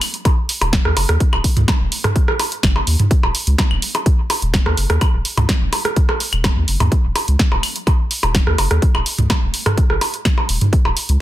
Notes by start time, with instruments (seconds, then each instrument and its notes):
0.01 open hi-hat, claves
0.14 closed hi-hat
0.25 kick, closed hi-hat, percussion blips
0.49 open hi-hat
0.61 sub bass D#1, closed hi-hat, percussion blips
0.73 kick, snare, closed hi-hat
0.85 sub bass D#2, cross-stick
0.97 sub bass F#1, open hi-hat, percussion blips
1.09 sub bass D#2, cross-stick, closed hi-hat
1.20 kick, closed hi-hat
1.33 sub bass D#1, claves, percussion blips
1.44 kick, open hi-hat
1.57 sub bass C#2, closed hi-hat, mid tom
1.68 kick, snare, closed hi-hat, percussion blips
1.80 sub bass D#1
1.92 open hi-hat
2.04 cross-stick, closed hi-hat, mid tom, percussion blips
2.16 kick, closed hi-hat
2.28 cross-stick
2.39 open hi-hat, percussion blips
2.52 closed hi-hat
2.63 sub bass F#1, kick, snare, closed hi-hat, claves
2.76 percussion blips
2.87 sub bass D#2, open hi-hat
2.99 closed hi-hat, mid tom
3.11 kick, closed hi-hat
3.23 sub bass D#1, percussion blips
3.35 open hi-hat
3.47 sub bass C#2, closed hi-hat
3.58 kick, snare, closed hi-hat, percussion blips
3.71 sub bass D#1, claves
3.82 open hi-hat
3.95 closed hi-hat, percussion blips
4.06 kick, closed hi-hat
4.30 open hi-hat, percussion blips
4.42 sub bass D#1, closed hi-hat
4.54 kick, snare, closed hi-hat
4.66 sub bass D#2, cross-stick, percussion blips
4.77 sub bass F#1, open hi-hat
4.90 sub bass D#2, cross-stick, closed hi-hat
5.01 kick, closed hi-hat, claves, percussion blips
5.14 sub bass D#1
5.25 open hi-hat
5.37 sub bass C#2, closed hi-hat, mid tom, percussion blips
5.49 kick, snare, closed hi-hat
5.61 sub bass D#1
5.73 open hi-hat, percussion blips
5.85 cross-stick, closed hi-hat
5.96 kick, closed hi-hat
6.09 cross-stick, percussion blips
6.20 open hi-hat
6.33 sub bass D#1, closed hi-hat, claves
6.44 kick, snare, closed hi-hat, percussion blips
6.56 sub bass D#2
6.68 sub bass F#1, open hi-hat
6.80 sub bass D#2, closed hi-hat, mid tom, percussion blips
6.92 kick, closed hi-hat
7.04 sub bass D#1
7.15 open hi-hat, percussion blips
7.28 sub bass C#2, closed hi-hat
7.39 kick, snare, closed hi-hat
7.52 sub bass D#1, percussion blips
7.63 open hi-hat, claves
7.76 closed hi-hat
7.87 kick, closed hi-hat, percussion blips
8.11 open hi-hat
8.23 sub bass D#1, closed hi-hat, percussion blips
8.35 kick, snare, closed hi-hat
8.47 sub bass D#2, cross-stick
8.58 sub bass F#1, open hi-hat, percussion blips
8.71 sub bass D#2, cross-stick, closed hi-hat
8.82 kick, closed hi-hat
8.95 sub bass D#1, claves, percussion blips
9.06 open hi-hat
9.18 sub bass C#2, closed hi-hat, mid tom
9.30 kick, snare, closed hi-hat, percussion blips
9.42 sub bass D#1
9.54 open hi-hat
9.66 cross-stick, closed hi-hat, mid tom, percussion blips
9.77 kick, closed hi-hat
9.90 sub bass F#1, cross-stick
10.01 open hi-hat, percussion blips
10.14 closed hi-hat
10.25 kick, snare, closed hi-hat, claves
10.38 percussion blips
10.49 sub bass D#1, open hi-hat
10.61 closed hi-hat, mid tom
10.73 kick, closed hi-hat
10.85 sub bass D#1, percussion blips
10.97 open hi-hat
11.09 sub bass C#2, closed hi-hat